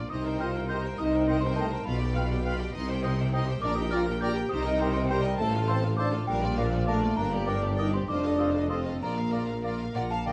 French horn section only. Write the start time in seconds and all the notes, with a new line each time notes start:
0.12 D#4
0.42 F4
0.71 G4
1.00 D#4
1.44 C4
1.57 A3
1.88 B3
3.63 D4
3.79 D#4
3.93 F4
4.22 G4
4.54 D#4
4.97 C4
5.10 G3
5.39 A3
5.69 C4
5.98 D4
6.27 G3
6.59 F3
6.88 A3
7.19 A#3
7.48 D4
7.80 D#4
7.94 C4
8.08 D4
8.70 C4
9.02 A#3